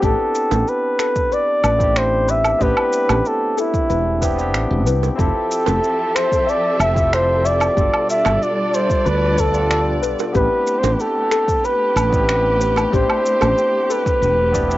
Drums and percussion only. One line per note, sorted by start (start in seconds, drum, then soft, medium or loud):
0.03 kick loud
0.03 shaker soft
0.35 shaker medium
0.51 high bongo medium
0.51 shaker soft
0.68 shaker soft
0.99 finger snap medium
0.99 shaker medium
1.16 kick medium
1.16 shaker soft
1.32 shaker soft
1.64 low woodblock medium
1.64 shaker medium
1.80 kick loud
1.80 shaker soft
1.96 finger snap medium
1.96 shaker soft
2.28 shaker medium
2.44 high bongo medium
2.44 low woodblock medium
2.44 shaker soft
2.61 kick loud
2.61 shaker soft
2.77 low woodblock medium
2.93 shaker medium
3.09 high bongo medium
3.09 low woodblock medium
3.09 shaker soft
3.26 shaker soft
3.58 shaker medium
3.74 kick loud
3.74 shaker soft
3.90 shaker soft
4.22 kick medium
4.22 shaker medium
4.39 shaker soft
4.54 finger snap medium
4.54 shaker soft
4.87 shaker medium
5.03 high bongo medium
5.03 shaker soft
5.19 kick loud
5.19 shaker soft
5.51 shaker medium
5.66 high bongo loud
5.66 shaker soft
5.84 shaker soft
6.16 finger snap medium
6.16 shaker medium
6.32 kick loud
6.32 shaker soft
6.49 shaker soft
6.80 low woodblock medium
6.80 shaker medium
6.96 kick loud
6.96 shaker soft
7.13 finger snap medium
7.13 shaker soft
7.46 shaker medium
7.60 high bongo medium
7.60 low woodblock medium
7.60 shaker soft
7.77 kick loud
7.77 shaker soft
7.94 low woodblock medium
8.10 shaker medium
8.25 high bongo loud
8.25 low woodblock medium
8.25 shaker soft
8.43 shaker soft
8.74 shaker medium
8.90 kick loud
8.90 shaker soft
9.06 shaker soft
9.38 kick medium
9.38 shaker medium
9.54 shaker soft
9.71 finger snap medium
9.71 shaker soft
10.03 shaker medium
10.19 high bongo medium
10.19 shaker soft
10.35 kick loud
10.35 shaker soft
10.67 shaker medium
10.83 high bongo loud
10.83 shaker soft
11.00 shaker soft
11.31 finger snap medium
11.31 shaker medium
11.48 kick loud
11.48 shaker soft
11.65 shaker soft
11.97 low woodblock medium
11.97 shaker medium
12.13 kick loud
12.13 shaker soft
12.29 finger snap medium
12.29 shaker soft
12.61 shaker medium
12.76 high bongo medium
12.76 low woodblock medium
12.76 shaker soft
12.93 kick loud
12.93 shaker soft
13.10 low woodblock medium
13.26 shaker medium
13.41 high bongo medium
13.41 low woodblock medium
13.41 shaker soft
13.58 shaker soft
13.90 shaker medium
14.06 kick loud
14.06 shaker soft
14.23 shaker soft
14.54 kick medium
14.54 shaker medium
14.71 shaker soft